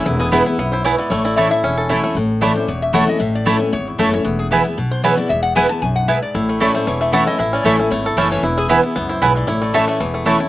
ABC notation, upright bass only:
X:1
M:4/4
L:1/8
Q:"Swing" 1/4=229
K:A
V:1 name="Upright bass" clef=bass
E,,,4 B,,,4 | A,,,4 E,,,4 | A,,,4 E,,,4 | A,,,4 G,,,2 F,,,2 |
E,,,4 B,,,4 | E,,,4 B,,,4 | A,,,4 E,,,4 | A,,,2 A,,,2 G,,,2 F,,,2 |
E,,,4 C,,2 B,,,2 | A,,,4 E,,,4 |]